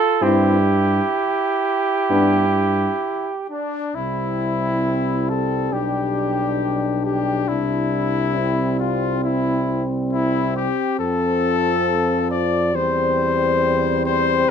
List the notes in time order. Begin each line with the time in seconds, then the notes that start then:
Already playing: F4 A4
0.20 G2 C4 E4 G4
2.10 G2 B3 D4
3.50 D4
3.95 C2 G3 C4 E4
5.29 A4
5.72 B1 D4 G4
7.04 G4
7.48 C2 G3 E4
8.37 C4
8.79 F4
9.24 E4
10.12 E4
10.56 G4
10.99 F2 F3 A4
12.31 D5
12.74 E2 G3 C4 C5
14.05 C5